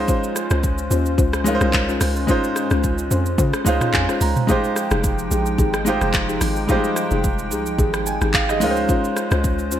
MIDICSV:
0, 0, Header, 1, 6, 480
1, 0, Start_track
1, 0, Tempo, 550459
1, 72, Time_signature, 4, 2, 24, 8
1, 8542, End_track
2, 0, Start_track
2, 0, Title_t, "Grand piano"
2, 0, Program_c, 0, 0
2, 0, Control_c, 0, 64, 127
2, 0, Note_on_c, 0, 56, 92
2, 0, Note_on_c, 0, 61, 80
2, 0, Note_on_c, 0, 63, 86
2, 0, Note_on_c, 0, 65, 87
2, 0, Note_on_c, 0, 72, 101
2, 0, Note_on_c, 0, 84, 76
2, 597, Note_off_c, 0, 56, 0
2, 602, Note_off_c, 0, 61, 0
2, 606, Note_off_c, 0, 63, 0
2, 610, Note_off_c, 0, 65, 0
2, 614, Note_off_c, 0, 72, 0
2, 1258, Note_on_c, 0, 56, 96
2, 1266, Note_on_c, 0, 61, 86
2, 1275, Note_on_c, 0, 63, 85
2, 1283, Note_on_c, 0, 65, 85
2, 1292, Note_on_c, 0, 70, 81
2, 1344, Note_off_c, 0, 70, 0
2, 1349, Note_on_c, 0, 72, 102
2, 1850, Note_off_c, 0, 56, 0
2, 1854, Note_off_c, 0, 61, 0
2, 1859, Note_off_c, 0, 63, 0
2, 1863, Note_off_c, 0, 65, 0
2, 1896, Note_off_c, 0, 72, 0
2, 1979, Note_on_c, 0, 56, 93
2, 1987, Note_on_c, 0, 61, 83
2, 1996, Note_on_c, 0, 63, 84
2, 2005, Note_on_c, 0, 65, 84
2, 2013, Note_on_c, 0, 72, 104
2, 2758, Note_off_c, 0, 56, 0
2, 2762, Note_off_c, 0, 61, 0
2, 2766, Note_off_c, 0, 63, 0
2, 2771, Note_off_c, 0, 65, 0
2, 2775, Note_off_c, 0, 72, 0
2, 3179, Note_on_c, 0, 56, 90
2, 3187, Note_on_c, 0, 61, 83
2, 3195, Note_on_c, 0, 63, 83
2, 3196, Note_on_c, 0, 77, 79
2, 3204, Note_on_c, 0, 65, 86
2, 3213, Note_on_c, 0, 72, 100
2, 3417, Note_off_c, 0, 77, 0
2, 3435, Note_on_c, 0, 80, 75
2, 3657, Note_off_c, 0, 80, 0
2, 3676, Note_on_c, 0, 82, 72
2, 3771, Note_off_c, 0, 56, 0
2, 3775, Note_off_c, 0, 61, 0
2, 3779, Note_off_c, 0, 63, 0
2, 3783, Note_off_c, 0, 65, 0
2, 3788, Note_off_c, 0, 72, 0
2, 3897, Note_off_c, 0, 82, 0
2, 3899, Note_on_c, 0, 56, 90
2, 3907, Note_on_c, 0, 63, 86
2, 3915, Note_on_c, 0, 65, 84
2, 3923, Control_c, 0, 64, 0
2, 3924, Note_on_c, 0, 67, 82
2, 3928, Note_off_c, 0, 84, 0
2, 3933, Note_on_c, 0, 72, 101
2, 4071, Control_c, 0, 64, 127
2, 4678, Note_off_c, 0, 56, 0
2, 4682, Note_off_c, 0, 63, 0
2, 4686, Note_off_c, 0, 65, 0
2, 4691, Note_off_c, 0, 67, 0
2, 4695, Note_off_c, 0, 72, 0
2, 5098, Note_on_c, 0, 56, 87
2, 5107, Note_on_c, 0, 63, 81
2, 5116, Note_on_c, 0, 65, 84
2, 5124, Note_on_c, 0, 67, 86
2, 5133, Note_on_c, 0, 72, 96
2, 5690, Note_off_c, 0, 56, 0
2, 5695, Note_off_c, 0, 63, 0
2, 5699, Note_off_c, 0, 65, 0
2, 5703, Note_off_c, 0, 67, 0
2, 5708, Note_off_c, 0, 72, 0
2, 5818, Note_on_c, 0, 55, 73
2, 5826, Note_on_c, 0, 63, 86
2, 5835, Note_on_c, 0, 65, 84
2, 5844, Note_on_c, 0, 67, 85
2, 5852, Note_on_c, 0, 72, 101
2, 5874, Note_on_c, 0, 56, 89
2, 5887, Note_off_c, 0, 55, 0
2, 6602, Note_off_c, 0, 63, 0
2, 6606, Note_off_c, 0, 65, 0
2, 6610, Note_off_c, 0, 67, 0
2, 6614, Note_off_c, 0, 72, 0
2, 6626, Note_off_c, 0, 56, 0
2, 7036, Note_on_c, 0, 80, 70
2, 7262, Note_off_c, 0, 80, 0
2, 7276, Note_on_c, 0, 77, 76
2, 7399, Note_off_c, 0, 77, 0
2, 7408, Note_on_c, 0, 75, 70
2, 7499, Note_on_c, 0, 56, 92
2, 7507, Note_on_c, 0, 61, 84
2, 7516, Note_on_c, 0, 63, 82
2, 7523, Control_c, 0, 64, 0
2, 7524, Note_on_c, 0, 65, 86
2, 7533, Note_on_c, 0, 70, 81
2, 7584, Note_off_c, 0, 70, 0
2, 7590, Note_on_c, 0, 72, 98
2, 7634, Note_off_c, 0, 75, 0
2, 7679, Control_c, 0, 64, 127
2, 8278, Note_off_c, 0, 56, 0
2, 8282, Note_off_c, 0, 61, 0
2, 8286, Note_off_c, 0, 63, 0
2, 8290, Note_off_c, 0, 65, 0
2, 8323, Note_off_c, 0, 72, 0
2, 8542, End_track
3, 0, Start_track
3, 0, Title_t, "Marimba"
3, 0, Program_c, 1, 12
3, 68, Note_on_c, 1, 61, 96
3, 71, Note_on_c, 1, 65, 90
3, 74, Note_on_c, 1, 72, 108
3, 153, Note_off_c, 1, 61, 0
3, 154, Note_off_c, 1, 65, 0
3, 156, Note_off_c, 1, 72, 0
3, 440, Note_on_c, 1, 61, 83
3, 443, Note_on_c, 1, 65, 73
3, 445, Note_on_c, 1, 72, 88
3, 510, Note_off_c, 1, 61, 0
3, 511, Note_off_c, 1, 65, 0
3, 513, Note_off_c, 1, 72, 0
3, 788, Note_on_c, 1, 61, 77
3, 791, Note_on_c, 1, 65, 72
3, 793, Note_on_c, 1, 72, 85
3, 873, Note_off_c, 1, 61, 0
3, 875, Note_off_c, 1, 65, 0
3, 876, Note_off_c, 1, 72, 0
3, 1028, Note_on_c, 1, 61, 100
3, 1031, Note_on_c, 1, 65, 90
3, 1033, Note_on_c, 1, 72, 110
3, 1370, Note_off_c, 1, 61, 0
3, 1371, Note_off_c, 1, 65, 0
3, 1373, Note_off_c, 1, 72, 0
3, 1400, Note_on_c, 1, 61, 78
3, 1403, Note_on_c, 1, 65, 73
3, 1406, Note_on_c, 1, 72, 88
3, 1470, Note_off_c, 1, 61, 0
3, 1472, Note_off_c, 1, 65, 0
3, 1473, Note_off_c, 1, 72, 0
3, 1640, Note_on_c, 1, 61, 80
3, 1643, Note_on_c, 1, 65, 73
3, 1646, Note_on_c, 1, 72, 92
3, 1710, Note_off_c, 1, 61, 0
3, 1712, Note_off_c, 1, 65, 0
3, 1713, Note_off_c, 1, 72, 0
3, 1988, Note_on_c, 1, 61, 96
3, 1990, Note_on_c, 1, 65, 86
3, 1993, Note_on_c, 1, 72, 107
3, 2073, Note_off_c, 1, 61, 0
3, 2074, Note_off_c, 1, 65, 0
3, 2076, Note_off_c, 1, 72, 0
3, 2361, Note_on_c, 1, 61, 84
3, 2363, Note_on_c, 1, 65, 72
3, 2366, Note_on_c, 1, 72, 93
3, 2430, Note_off_c, 1, 61, 0
3, 2431, Note_off_c, 1, 65, 0
3, 2433, Note_off_c, 1, 72, 0
3, 2709, Note_on_c, 1, 61, 77
3, 2711, Note_on_c, 1, 65, 70
3, 2714, Note_on_c, 1, 72, 84
3, 2793, Note_off_c, 1, 61, 0
3, 2795, Note_off_c, 1, 65, 0
3, 2796, Note_off_c, 1, 72, 0
3, 2948, Note_on_c, 1, 61, 95
3, 2951, Note_on_c, 1, 65, 91
3, 2954, Note_on_c, 1, 72, 108
3, 3290, Note_off_c, 1, 61, 0
3, 3291, Note_off_c, 1, 65, 0
3, 3293, Note_off_c, 1, 72, 0
3, 3320, Note_on_c, 1, 61, 80
3, 3323, Note_on_c, 1, 65, 72
3, 3326, Note_on_c, 1, 72, 89
3, 3390, Note_off_c, 1, 61, 0
3, 3392, Note_off_c, 1, 65, 0
3, 3393, Note_off_c, 1, 72, 0
3, 3560, Note_on_c, 1, 61, 81
3, 3563, Note_on_c, 1, 65, 75
3, 3565, Note_on_c, 1, 72, 88
3, 3630, Note_off_c, 1, 61, 0
3, 3631, Note_off_c, 1, 65, 0
3, 3633, Note_off_c, 1, 72, 0
3, 3908, Note_on_c, 1, 63, 98
3, 3911, Note_on_c, 1, 67, 86
3, 3914, Note_on_c, 1, 68, 103
3, 3993, Note_off_c, 1, 63, 0
3, 3995, Note_off_c, 1, 67, 0
3, 3996, Note_off_c, 1, 68, 0
3, 4281, Note_on_c, 1, 63, 81
3, 4283, Note_on_c, 1, 67, 74
3, 4286, Note_on_c, 1, 68, 90
3, 4350, Note_off_c, 1, 63, 0
3, 4352, Note_off_c, 1, 67, 0
3, 4353, Note_off_c, 1, 68, 0
3, 4629, Note_on_c, 1, 63, 78
3, 4632, Note_on_c, 1, 67, 72
3, 4634, Note_on_c, 1, 68, 85
3, 4714, Note_off_c, 1, 63, 0
3, 4715, Note_off_c, 1, 67, 0
3, 4716, Note_off_c, 1, 68, 0
3, 4869, Note_on_c, 1, 63, 97
3, 4872, Note_on_c, 1, 67, 89
3, 4874, Note_on_c, 1, 68, 104
3, 5210, Note_off_c, 1, 63, 0
3, 5212, Note_off_c, 1, 67, 0
3, 5213, Note_off_c, 1, 68, 0
3, 5241, Note_on_c, 1, 63, 80
3, 5244, Note_on_c, 1, 67, 72
3, 5246, Note_on_c, 1, 68, 89
3, 5311, Note_off_c, 1, 63, 0
3, 5312, Note_off_c, 1, 67, 0
3, 5313, Note_off_c, 1, 68, 0
3, 5480, Note_on_c, 1, 63, 81
3, 5483, Note_on_c, 1, 67, 74
3, 5486, Note_on_c, 1, 68, 90
3, 5550, Note_off_c, 1, 63, 0
3, 5551, Note_off_c, 1, 67, 0
3, 5553, Note_off_c, 1, 68, 0
3, 5828, Note_on_c, 1, 63, 96
3, 5831, Note_on_c, 1, 67, 85
3, 5833, Note_on_c, 1, 68, 107
3, 5913, Note_off_c, 1, 63, 0
3, 5914, Note_off_c, 1, 67, 0
3, 5916, Note_off_c, 1, 68, 0
3, 6200, Note_on_c, 1, 63, 79
3, 6203, Note_on_c, 1, 67, 73
3, 6205, Note_on_c, 1, 68, 91
3, 6270, Note_off_c, 1, 63, 0
3, 6271, Note_off_c, 1, 67, 0
3, 6273, Note_off_c, 1, 68, 0
3, 6548, Note_on_c, 1, 63, 78
3, 6551, Note_on_c, 1, 67, 74
3, 6553, Note_on_c, 1, 68, 85
3, 6633, Note_off_c, 1, 63, 0
3, 6634, Note_off_c, 1, 67, 0
3, 6635, Note_off_c, 1, 68, 0
3, 6788, Note_on_c, 1, 63, 98
3, 6791, Note_on_c, 1, 67, 87
3, 6793, Note_on_c, 1, 68, 112
3, 7130, Note_off_c, 1, 63, 0
3, 7131, Note_off_c, 1, 67, 0
3, 7133, Note_off_c, 1, 68, 0
3, 7160, Note_on_c, 1, 63, 80
3, 7163, Note_on_c, 1, 67, 73
3, 7165, Note_on_c, 1, 68, 90
3, 7230, Note_off_c, 1, 63, 0
3, 7231, Note_off_c, 1, 67, 0
3, 7233, Note_off_c, 1, 68, 0
3, 7399, Note_on_c, 1, 63, 80
3, 7402, Note_on_c, 1, 67, 73
3, 7404, Note_on_c, 1, 68, 85
3, 7469, Note_off_c, 1, 63, 0
3, 7471, Note_off_c, 1, 67, 0
3, 7472, Note_off_c, 1, 68, 0
3, 7748, Note_on_c, 1, 61, 92
3, 7750, Note_on_c, 1, 65, 86
3, 7753, Note_on_c, 1, 72, 103
3, 7833, Note_off_c, 1, 61, 0
3, 7834, Note_off_c, 1, 65, 0
3, 7836, Note_off_c, 1, 72, 0
3, 8120, Note_on_c, 1, 61, 81
3, 8123, Note_on_c, 1, 65, 76
3, 8126, Note_on_c, 1, 72, 88
3, 8190, Note_off_c, 1, 61, 0
3, 8191, Note_off_c, 1, 65, 0
3, 8193, Note_off_c, 1, 72, 0
3, 8468, Note_on_c, 1, 61, 79
3, 8471, Note_on_c, 1, 65, 70
3, 8473, Note_on_c, 1, 72, 89
3, 8542, Note_off_c, 1, 61, 0
3, 8542, Note_off_c, 1, 65, 0
3, 8542, Note_off_c, 1, 72, 0
3, 8542, End_track
4, 0, Start_track
4, 0, Title_t, "Analog synth pad"
4, 0, Program_c, 2, 89
4, 0, Note_on_c, 2, 56, 74
4, 0, Note_on_c, 2, 61, 82
4, 0, Note_on_c, 2, 65, 87
4, 0, Note_on_c, 2, 72, 71
4, 3876, Note_off_c, 2, 56, 0
4, 3876, Note_off_c, 2, 65, 0
4, 3876, Note_off_c, 2, 72, 0
4, 3877, Note_off_c, 2, 61, 0
4, 3911, Note_on_c, 2, 53, 81
4, 3911, Note_on_c, 2, 63, 73
4, 3911, Note_on_c, 2, 79, 74
4, 3912, Note_on_c, 2, 56, 89
4, 7476, Note_off_c, 2, 53, 0
4, 7476, Note_off_c, 2, 63, 0
4, 7476, Note_off_c, 2, 79, 0
4, 7477, Note_off_c, 2, 56, 0
4, 7510, Note_on_c, 2, 61, 80
4, 7511, Note_on_c, 2, 56, 75
4, 7511, Note_on_c, 2, 65, 88
4, 7511, Note_on_c, 2, 72, 76
4, 8542, Note_off_c, 2, 56, 0
4, 8542, Note_off_c, 2, 61, 0
4, 8542, Note_off_c, 2, 65, 0
4, 8542, Note_off_c, 2, 72, 0
4, 8542, End_track
5, 0, Start_track
5, 0, Title_t, "Log drum bass"
5, 0, Program_c, 3, 39
5, 443, Note_on_c, 3, 37, 100
5, 775, Note_off_c, 3, 37, 0
5, 791, Note_on_c, 3, 39, 98
5, 1020, Note_off_c, 3, 39, 0
5, 1029, Note_on_c, 3, 37, 93
5, 1384, Note_off_c, 3, 37, 0
5, 1403, Note_on_c, 3, 36, 93
5, 1735, Note_off_c, 3, 36, 0
5, 1752, Note_on_c, 3, 37, 96
5, 1980, Note_off_c, 3, 37, 0
5, 2363, Note_on_c, 3, 37, 99
5, 2695, Note_off_c, 3, 37, 0
5, 2711, Note_on_c, 3, 41, 93
5, 2940, Note_off_c, 3, 41, 0
5, 2949, Note_on_c, 3, 49, 98
5, 3076, Note_off_c, 3, 49, 0
5, 3192, Note_on_c, 3, 37, 97
5, 3317, Note_off_c, 3, 37, 0
5, 3432, Note_on_c, 3, 41, 93
5, 3558, Note_off_c, 3, 41, 0
5, 3671, Note_on_c, 3, 37, 98
5, 3797, Note_off_c, 3, 37, 0
5, 4284, Note_on_c, 3, 29, 106
5, 4615, Note_off_c, 3, 29, 0
5, 4631, Note_on_c, 3, 34, 92
5, 4860, Note_off_c, 3, 34, 0
5, 4869, Note_on_c, 3, 32, 94
5, 5224, Note_off_c, 3, 32, 0
5, 5243, Note_on_c, 3, 29, 90
5, 5575, Note_off_c, 3, 29, 0
5, 5591, Note_on_c, 3, 32, 97
5, 5820, Note_off_c, 3, 32, 0
5, 6203, Note_on_c, 3, 29, 105
5, 6550, Note_on_c, 3, 36, 95
5, 6564, Note_off_c, 3, 29, 0
5, 6779, Note_off_c, 3, 36, 0
5, 6788, Note_on_c, 3, 32, 94
5, 7144, Note_off_c, 3, 32, 0
5, 7163, Note_on_c, 3, 32, 93
5, 7511, Note_on_c, 3, 37, 105
5, 7524, Note_off_c, 3, 32, 0
5, 7739, Note_off_c, 3, 37, 0
5, 8122, Note_on_c, 3, 37, 101
5, 8471, Note_on_c, 3, 39, 105
5, 8484, Note_off_c, 3, 37, 0
5, 8542, Note_off_c, 3, 39, 0
5, 8542, End_track
6, 0, Start_track
6, 0, Title_t, "Drums"
6, 71, Note_on_c, 9, 36, 119
6, 72, Note_on_c, 9, 82, 88
6, 159, Note_off_c, 9, 36, 0
6, 159, Note_off_c, 9, 82, 0
6, 206, Note_on_c, 9, 82, 56
6, 294, Note_off_c, 9, 82, 0
6, 312, Note_on_c, 9, 37, 88
6, 315, Note_on_c, 9, 82, 105
6, 400, Note_off_c, 9, 37, 0
6, 402, Note_off_c, 9, 82, 0
6, 439, Note_on_c, 9, 82, 61
6, 445, Note_on_c, 9, 37, 96
6, 526, Note_off_c, 9, 82, 0
6, 532, Note_off_c, 9, 37, 0
6, 553, Note_on_c, 9, 82, 83
6, 554, Note_on_c, 9, 36, 97
6, 640, Note_off_c, 9, 82, 0
6, 641, Note_off_c, 9, 36, 0
6, 682, Note_on_c, 9, 82, 58
6, 769, Note_off_c, 9, 82, 0
6, 794, Note_on_c, 9, 82, 104
6, 881, Note_off_c, 9, 82, 0
6, 922, Note_on_c, 9, 82, 56
6, 1009, Note_off_c, 9, 82, 0
6, 1029, Note_on_c, 9, 36, 117
6, 1034, Note_on_c, 9, 82, 78
6, 1116, Note_off_c, 9, 36, 0
6, 1121, Note_off_c, 9, 82, 0
6, 1163, Note_on_c, 9, 37, 106
6, 1163, Note_on_c, 9, 82, 50
6, 1250, Note_off_c, 9, 37, 0
6, 1250, Note_off_c, 9, 82, 0
6, 1273, Note_on_c, 9, 82, 109
6, 1361, Note_off_c, 9, 82, 0
6, 1404, Note_on_c, 9, 82, 51
6, 1405, Note_on_c, 9, 37, 96
6, 1491, Note_off_c, 9, 82, 0
6, 1492, Note_off_c, 9, 37, 0
6, 1510, Note_on_c, 9, 82, 74
6, 1512, Note_on_c, 9, 36, 99
6, 1512, Note_on_c, 9, 39, 95
6, 1598, Note_off_c, 9, 82, 0
6, 1599, Note_off_c, 9, 39, 0
6, 1600, Note_off_c, 9, 36, 0
6, 1649, Note_on_c, 9, 82, 63
6, 1736, Note_off_c, 9, 82, 0
6, 1751, Note_on_c, 9, 37, 105
6, 1751, Note_on_c, 9, 46, 83
6, 1751, Note_on_c, 9, 82, 101
6, 1838, Note_off_c, 9, 37, 0
6, 1839, Note_off_c, 9, 46, 0
6, 1839, Note_off_c, 9, 82, 0
6, 1884, Note_on_c, 9, 82, 49
6, 1971, Note_off_c, 9, 82, 0
6, 1991, Note_on_c, 9, 36, 113
6, 1993, Note_on_c, 9, 82, 84
6, 2079, Note_off_c, 9, 36, 0
6, 2080, Note_off_c, 9, 82, 0
6, 2126, Note_on_c, 9, 82, 57
6, 2214, Note_off_c, 9, 82, 0
6, 2232, Note_on_c, 9, 37, 89
6, 2234, Note_on_c, 9, 82, 104
6, 2319, Note_off_c, 9, 37, 0
6, 2321, Note_off_c, 9, 82, 0
6, 2358, Note_on_c, 9, 82, 61
6, 2364, Note_on_c, 9, 37, 94
6, 2445, Note_off_c, 9, 82, 0
6, 2451, Note_off_c, 9, 37, 0
6, 2473, Note_on_c, 9, 82, 83
6, 2474, Note_on_c, 9, 36, 98
6, 2560, Note_off_c, 9, 82, 0
6, 2561, Note_off_c, 9, 36, 0
6, 2602, Note_on_c, 9, 82, 57
6, 2689, Note_off_c, 9, 82, 0
6, 2713, Note_on_c, 9, 82, 108
6, 2800, Note_off_c, 9, 82, 0
6, 2841, Note_on_c, 9, 82, 58
6, 2929, Note_off_c, 9, 82, 0
6, 2949, Note_on_c, 9, 36, 115
6, 2953, Note_on_c, 9, 82, 80
6, 3036, Note_off_c, 9, 36, 0
6, 3040, Note_off_c, 9, 82, 0
6, 3083, Note_on_c, 9, 37, 107
6, 3083, Note_on_c, 9, 82, 49
6, 3170, Note_off_c, 9, 37, 0
6, 3170, Note_off_c, 9, 82, 0
6, 3192, Note_on_c, 9, 82, 112
6, 3280, Note_off_c, 9, 82, 0
6, 3322, Note_on_c, 9, 45, 67
6, 3324, Note_on_c, 9, 82, 48
6, 3325, Note_on_c, 9, 37, 93
6, 3409, Note_off_c, 9, 45, 0
6, 3411, Note_off_c, 9, 82, 0
6, 3412, Note_off_c, 9, 37, 0
6, 3431, Note_on_c, 9, 82, 76
6, 3432, Note_on_c, 9, 36, 95
6, 3432, Note_on_c, 9, 39, 95
6, 3518, Note_off_c, 9, 82, 0
6, 3520, Note_off_c, 9, 36, 0
6, 3520, Note_off_c, 9, 39, 0
6, 3566, Note_on_c, 9, 37, 85
6, 3569, Note_on_c, 9, 82, 59
6, 3653, Note_off_c, 9, 37, 0
6, 3656, Note_off_c, 9, 82, 0
6, 3672, Note_on_c, 9, 46, 80
6, 3672, Note_on_c, 9, 82, 106
6, 3759, Note_off_c, 9, 46, 0
6, 3759, Note_off_c, 9, 82, 0
6, 3804, Note_on_c, 9, 45, 89
6, 3804, Note_on_c, 9, 82, 49
6, 3891, Note_off_c, 9, 82, 0
6, 3892, Note_off_c, 9, 45, 0
6, 3912, Note_on_c, 9, 36, 116
6, 3913, Note_on_c, 9, 82, 86
6, 3999, Note_off_c, 9, 36, 0
6, 4000, Note_off_c, 9, 82, 0
6, 4047, Note_on_c, 9, 82, 55
6, 4134, Note_off_c, 9, 82, 0
6, 4152, Note_on_c, 9, 37, 87
6, 4155, Note_on_c, 9, 82, 101
6, 4240, Note_off_c, 9, 37, 0
6, 4242, Note_off_c, 9, 82, 0
6, 4279, Note_on_c, 9, 82, 59
6, 4285, Note_on_c, 9, 37, 98
6, 4366, Note_off_c, 9, 82, 0
6, 4372, Note_off_c, 9, 37, 0
6, 4393, Note_on_c, 9, 82, 87
6, 4394, Note_on_c, 9, 36, 101
6, 4481, Note_off_c, 9, 36, 0
6, 4481, Note_off_c, 9, 82, 0
6, 4522, Note_on_c, 9, 82, 58
6, 4609, Note_off_c, 9, 82, 0
6, 4634, Note_on_c, 9, 82, 103
6, 4721, Note_off_c, 9, 82, 0
6, 4762, Note_on_c, 9, 82, 57
6, 4849, Note_off_c, 9, 82, 0
6, 4869, Note_on_c, 9, 36, 120
6, 4873, Note_on_c, 9, 82, 78
6, 4956, Note_off_c, 9, 36, 0
6, 4960, Note_off_c, 9, 82, 0
6, 5003, Note_on_c, 9, 37, 100
6, 5003, Note_on_c, 9, 82, 52
6, 5090, Note_off_c, 9, 37, 0
6, 5090, Note_off_c, 9, 82, 0
6, 5113, Note_on_c, 9, 82, 108
6, 5200, Note_off_c, 9, 82, 0
6, 5243, Note_on_c, 9, 82, 51
6, 5245, Note_on_c, 9, 37, 91
6, 5331, Note_off_c, 9, 82, 0
6, 5332, Note_off_c, 9, 37, 0
6, 5350, Note_on_c, 9, 82, 74
6, 5351, Note_on_c, 9, 39, 96
6, 5352, Note_on_c, 9, 36, 99
6, 5437, Note_off_c, 9, 82, 0
6, 5438, Note_off_c, 9, 39, 0
6, 5439, Note_off_c, 9, 36, 0
6, 5488, Note_on_c, 9, 82, 63
6, 5575, Note_off_c, 9, 82, 0
6, 5590, Note_on_c, 9, 37, 104
6, 5591, Note_on_c, 9, 46, 85
6, 5591, Note_on_c, 9, 82, 105
6, 5678, Note_off_c, 9, 37, 0
6, 5678, Note_off_c, 9, 46, 0
6, 5678, Note_off_c, 9, 82, 0
6, 5723, Note_on_c, 9, 82, 50
6, 5810, Note_off_c, 9, 82, 0
6, 5831, Note_on_c, 9, 36, 118
6, 5832, Note_on_c, 9, 82, 83
6, 5918, Note_off_c, 9, 36, 0
6, 5919, Note_off_c, 9, 82, 0
6, 5966, Note_on_c, 9, 82, 55
6, 6053, Note_off_c, 9, 82, 0
6, 6072, Note_on_c, 9, 37, 89
6, 6074, Note_on_c, 9, 82, 102
6, 6159, Note_off_c, 9, 37, 0
6, 6161, Note_off_c, 9, 82, 0
6, 6198, Note_on_c, 9, 82, 60
6, 6285, Note_off_c, 9, 82, 0
6, 6313, Note_on_c, 9, 82, 82
6, 6314, Note_on_c, 9, 36, 96
6, 6400, Note_off_c, 9, 82, 0
6, 6401, Note_off_c, 9, 36, 0
6, 6441, Note_on_c, 9, 82, 56
6, 6528, Note_off_c, 9, 82, 0
6, 6553, Note_on_c, 9, 82, 104
6, 6640, Note_off_c, 9, 82, 0
6, 6681, Note_on_c, 9, 82, 54
6, 6768, Note_off_c, 9, 82, 0
6, 6788, Note_on_c, 9, 36, 115
6, 6793, Note_on_c, 9, 82, 79
6, 6876, Note_off_c, 9, 36, 0
6, 6880, Note_off_c, 9, 82, 0
6, 6921, Note_on_c, 9, 37, 103
6, 6922, Note_on_c, 9, 82, 50
6, 7009, Note_off_c, 9, 37, 0
6, 7009, Note_off_c, 9, 82, 0
6, 7032, Note_on_c, 9, 82, 114
6, 7119, Note_off_c, 9, 82, 0
6, 7163, Note_on_c, 9, 82, 49
6, 7164, Note_on_c, 9, 37, 93
6, 7250, Note_off_c, 9, 82, 0
6, 7251, Note_off_c, 9, 37, 0
6, 7269, Note_on_c, 9, 82, 75
6, 7271, Note_on_c, 9, 36, 94
6, 7271, Note_on_c, 9, 39, 98
6, 7356, Note_off_c, 9, 82, 0
6, 7358, Note_off_c, 9, 39, 0
6, 7359, Note_off_c, 9, 36, 0
6, 7405, Note_on_c, 9, 37, 86
6, 7408, Note_on_c, 9, 82, 64
6, 7492, Note_off_c, 9, 37, 0
6, 7495, Note_off_c, 9, 82, 0
6, 7510, Note_on_c, 9, 46, 85
6, 7510, Note_on_c, 9, 82, 104
6, 7597, Note_off_c, 9, 46, 0
6, 7597, Note_off_c, 9, 82, 0
6, 7643, Note_on_c, 9, 82, 50
6, 7730, Note_off_c, 9, 82, 0
6, 7751, Note_on_c, 9, 36, 115
6, 7752, Note_on_c, 9, 82, 83
6, 7838, Note_off_c, 9, 36, 0
6, 7839, Note_off_c, 9, 82, 0
6, 7886, Note_on_c, 9, 82, 53
6, 7973, Note_off_c, 9, 82, 0
6, 7992, Note_on_c, 9, 37, 87
6, 7994, Note_on_c, 9, 82, 101
6, 8079, Note_off_c, 9, 37, 0
6, 8081, Note_off_c, 9, 82, 0
6, 8118, Note_on_c, 9, 82, 62
6, 8124, Note_on_c, 9, 37, 100
6, 8206, Note_off_c, 9, 82, 0
6, 8212, Note_off_c, 9, 37, 0
6, 8233, Note_on_c, 9, 36, 104
6, 8233, Note_on_c, 9, 82, 83
6, 8320, Note_off_c, 9, 36, 0
6, 8320, Note_off_c, 9, 82, 0
6, 8361, Note_on_c, 9, 82, 55
6, 8448, Note_off_c, 9, 82, 0
6, 8473, Note_on_c, 9, 82, 110
6, 8542, Note_off_c, 9, 82, 0
6, 8542, End_track
0, 0, End_of_file